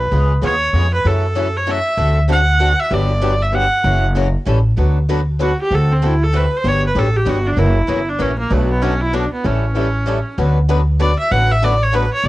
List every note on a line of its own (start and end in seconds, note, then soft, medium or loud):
0.00 0.31 B4 medium
0.12 0.37 C#2 medium
0.12 0.31 C#3 medium
0.12 0.31 G#3 medium
0.12 0.31 B3 medium
0.12 0.32 F4 medium
0.12 0.32 G#4 medium
0.42 0.69 D#2 medium
0.42 0.53 C#3 medium
0.42 0.53 G#3 medium
0.42 0.53 B3 medium
0.42 0.54 F4 loud
0.42 0.54 G#4 medium
0.42 0.90 C#5 loud
0.73 1.00 F2 medium
0.73 0.84 C#3 medium
0.73 0.85 G#3 medium
0.73 0.85 B3 medium
0.73 0.85 F4 loud
0.73 0.85 G#4 medium
0.94 1.08 B4 loud
1.05 1.79 F#2 medium
1.05 1.24 C#3 medium
1.05 1.25 E3 medium
1.05 1.25 F#3 medium
1.05 1.25 A3 medium
1.05 1.25 C#4 medium
1.05 1.25 E4 medium
1.05 1.25 F#4 medium
1.05 1.25 A4 medium
1.05 1.59 A4 medium
1.35 1.46 C#3 medium
1.35 1.46 E3 medium
1.35 1.46 F#3 medium
1.35 1.46 A3 medium
1.35 1.47 C#4 loud
1.35 1.47 E4 medium
1.35 1.47 F#4 medium
1.35 1.47 A4 medium
1.57 1.72 C#5 medium
1.66 1.77 C#3 medium
1.66 1.78 E3 medium
1.66 1.77 F#3 medium
1.66 1.78 A3 medium
1.66 1.78 C#4 medium
1.66 1.78 E4 medium
1.66 1.78 F#4 medium
1.66 1.78 A4 medium
1.71 2.18 E5 medium
1.97 2.72 D2 medium
1.97 2.18 D3 medium
1.97 2.18 A3 medium
1.97 2.18 C4 medium
1.97 2.18 F#4 medium
1.97 2.18 A4 medium
2.28 2.39 D3 medium
2.28 2.39 A3 medium
2.28 2.40 C4 medium
2.28 2.40 F#4 loud
2.28 2.40 A4 loud
2.32 2.81 F#5 loud
2.60 2.71 D3 loud
2.60 2.71 A3 loud
2.60 2.71 C4 medium
2.60 2.71 F#4 medium
2.60 2.71 A4 loud
2.80 2.95 E5 loud
2.91 3.66 G1 medium
2.91 3.11 D3 medium
2.91 3.11 F#3 medium
2.91 3.11 B3 medium
2.91 3.11 D4 medium
2.91 3.11 G4 medium
2.91 3.44 D5 medium
3.21 3.33 D3 medium
3.21 3.33 F#3 medium
3.21 3.33 B3 medium
3.21 3.33 D4 loud
3.21 3.33 G4 loud
3.42 3.56 E5 medium
3.52 3.63 D3 medium
3.52 3.64 F#3 medium
3.52 3.64 B3 medium
3.52 3.64 D4 loud
3.52 3.64 G4 loud
3.52 4.04 F#5 medium
3.83 4.34 F#1 loud
3.83 4.04 C#3 medium
3.83 4.05 E3 medium
3.83 4.03 F#3 medium
3.83 4.04 A#3 medium
3.83 4.05 C#4 medium
3.83 4.04 E4 medium
3.83 4.05 F#4 medium
3.83 4.04 A#4 medium
4.15 4.26 C#3 medium
4.15 4.27 E3 medium
4.15 4.26 F#3 medium
4.15 4.27 A#3 medium
4.15 4.27 C#4 loud
4.15 4.26 E4 medium
4.15 4.27 F#4 loud
4.15 4.27 A#4 loud
4.46 4.71 A1 medium
4.46 4.57 E3 medium
4.46 4.58 G3 medium
4.46 4.58 C#4 loud
4.46 4.58 E4 medium
4.46 4.58 A4 loud
4.77 5.52 D2 medium
4.77 4.98 D3 medium
4.77 4.98 F#3 medium
4.77 4.97 A3 medium
4.77 4.98 B3 medium
4.77 4.97 D4 medium
4.77 4.98 F#4 medium
4.77 4.98 B4 medium
5.09 5.20 D3 medium
5.09 5.20 F#3 medium
5.09 5.20 A3 medium
5.09 5.20 B3 medium
5.09 5.20 D4 medium
5.09 5.20 F#4 medium
5.09 5.20 B4 loud
5.39 5.50 D3 medium
5.39 5.50 F#3 medium
5.39 5.51 A3 medium
5.39 5.51 B3 medium
5.39 5.51 D4 medium
5.39 5.51 F#4 medium
5.39 5.58 F#4 medium
5.39 5.51 B4 medium
5.61 5.76 G4 medium
5.71 6.46 D2 medium
5.71 5.91 D3 medium
5.71 5.91 A3 medium
5.71 5.91 C4 medium
5.71 5.91 F#4 medium
5.71 5.91 A4 medium
5.71 5.94 A4 medium
5.92 6.07 C4 medium
6.02 6.13 D3 medium
6.02 6.13 A3 medium
6.02 6.13 C4 medium
6.02 6.25 E4 medium
6.02 6.13 F#4 loud
6.02 6.14 A4 medium
6.23 6.38 A4 medium
6.33 6.44 D3 medium
6.33 6.44 A3 medium
6.33 6.44 C4 medium
6.33 6.44 F#4 medium
6.33 6.44 A4 medium
6.33 6.58 B4 medium
6.57 6.70 C5 medium
6.64 6.89 G1 medium
6.64 6.84 D3 medium
6.64 6.84 F#3 medium
6.64 6.84 B3 medium
6.64 6.84 D4 medium
6.64 6.84 G4 medium
6.68 6.85 C#5 loud
6.87 7.00 B4 medium
6.95 7.22 A1 medium
6.95 7.06 D3 medium
6.95 7.06 F#3 medium
6.95 7.06 B3 medium
6.95 7.06 D4 loud
6.95 7.07 G4 loud
6.95 7.18 A4 medium
7.16 7.30 G4 medium
7.25 7.53 G1 medium
7.25 7.37 D3 medium
7.25 7.37 F#3 medium
7.25 7.37 B3 medium
7.25 7.37 D4 loud
7.25 7.48 F#4 medium
7.25 7.37 G4 loud
7.47 7.60 D4 medium
7.56 7.82 F#1 medium
7.56 7.77 C#3 medium
7.56 7.77 E3 medium
7.56 7.77 F#3 medium
7.56 7.77 A#3 medium
7.56 7.77 C#4 medium
7.56 7.78 E4 medium
7.56 8.10 E4 medium
7.56 7.77 F#4 medium
7.56 7.78 A#4 medium
7.87 8.15 G1 medium
7.87 7.99 C#3 medium
7.87 7.99 E3 medium
7.87 7.99 F#3 medium
7.87 7.99 A#3 medium
7.87 8.00 C#4 medium
7.87 7.99 E4 loud
7.87 8.00 F#4 loud
7.87 7.99 A#4 medium
8.09 8.23 D4 medium
8.19 8.46 A#1 medium
8.19 8.30 C#3 medium
8.19 8.30 E3 medium
8.19 8.30 F#3 medium
8.19 8.30 A#3 medium
8.19 8.31 C#4 loud
8.19 8.38 C#4 medium
8.19 8.31 E4 medium
8.19 8.31 F#4 medium
8.19 8.31 A#4 loud
8.39 8.54 A#3 medium
8.50 9.25 B1 medium
8.50 8.70 B2 medium
8.50 8.71 F#3 medium
8.50 8.71 A3 medium
8.50 8.69 A3 medium
8.50 8.71 D4 medium
8.50 8.71 F#4 medium
8.50 8.71 B4 medium
8.70 8.84 B3 medium
8.82 8.93 B2 medium
8.82 8.93 F#3 medium
8.82 8.93 A3 medium
8.82 9.02 C#4 medium
8.82 8.93 D4 medium
8.82 8.93 F#4 medium
8.82 8.93 B4 medium
9.01 9.15 E4 loud
9.13 9.24 B2 loud
9.13 9.24 F#3 loud
9.13 9.24 A3 medium
9.13 9.32 D4 medium
9.13 9.24 D4 loud
9.13 9.24 F#4 medium
9.13 9.24 B4 medium
9.33 9.47 B3 medium
9.44 10.19 A1 loud
9.44 9.64 E3 medium
9.44 9.64 G3 medium
9.44 9.64 C#4 medium
9.44 10.39 C#4 medium
9.44 9.64 E4 medium
9.44 9.65 A4 medium
9.74 9.86 E3 medium
9.74 9.86 G3 medium
9.74 9.86 C#4 medium
9.74 9.86 E4 loud
9.74 9.86 A4 loud
10.06 10.17 E3 medium
10.06 10.17 G3 loud
10.06 10.17 C#4 loud
10.06 10.17 E4 medium
10.06 10.18 A4 medium
10.38 11.13 D2 medium
10.38 10.57 D3 medium
10.38 10.58 F#3 medium
10.38 10.58 A3 medium
10.38 10.58 B3 medium
10.38 10.58 D4 medium
10.38 10.58 F#4 medium
10.38 10.58 B4 medium
10.69 10.79 D3 medium
10.69 10.79 F#3 medium
10.69 10.80 A3 loud
10.69 10.80 B3 loud
10.69 10.80 D4 medium
10.69 10.80 F#4 medium
10.69 10.80 B4 loud
11.00 11.10 D3 medium
11.00 11.11 F#3 medium
11.00 11.11 A3 medium
11.00 11.11 B3 loud
11.00 11.11 D4 medium
11.00 11.11 F#4 loud
11.00 11.11 B4 loud
11.00 11.18 D5 loud
11.19 11.33 E5 loud
11.30 12.06 A1 medium
11.30 11.50 D3 medium
11.30 11.51 F#3 medium
11.30 11.51 A3 medium
11.30 11.51 B3 medium
11.30 11.51 D4 medium
11.30 11.51 F#4 medium
11.30 11.51 B4 medium
11.30 11.53 F#5 loud
11.51 11.66 E5 loud
11.62 11.73 D3 medium
11.62 11.73 F#3 loud
11.62 11.73 A3 loud
11.62 11.73 B3 loud
11.62 11.73 D4 loud
11.62 11.74 F#4 loud
11.62 11.74 B4 loud
11.62 11.84 D5 medium
11.83 11.96 C#5 medium
11.92 12.04 D3 medium
11.92 12.04 F#3 loud
11.92 12.04 A3 loud
11.92 12.04 B3 medium
11.92 12.04 D4 loud
11.92 12.04 F#4 loud
11.92 12.04 B4 loud
11.92 12.12 B4 medium
12.13 12.27 C#5 loud
12.23 12.28 B1 medium
12.23 12.28 B2 medium
12.23 12.28 F#3 medium
12.23 12.28 A3 medium
12.23 12.28 D4 medium
12.23 12.28 F#4 medium